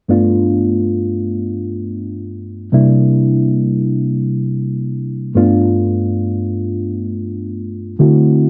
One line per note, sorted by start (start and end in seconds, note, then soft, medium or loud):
0.08 2.69 G2 medium
0.08 2.69 A3 soft
0.08 2.69 B3 soft
0.08 2.70 D4 medium
0.08 2.70 F4 medium
2.72 5.32 C3 medium
2.72 5.33 G3 medium
2.72 5.33 A#3 medium
2.72 5.33 D4 medium
2.72 5.33 E4 medium
5.35 7.95 G2 medium
5.35 7.95 A3 medium
5.35 7.96 B3 medium
5.35 7.96 D4 medium
5.35 7.96 F4 medium
7.99 8.50 D3 medium
7.99 8.50 A3 medium
7.99 8.50 C4 medium
7.99 8.50 E4 medium
7.99 8.50 F#4 medium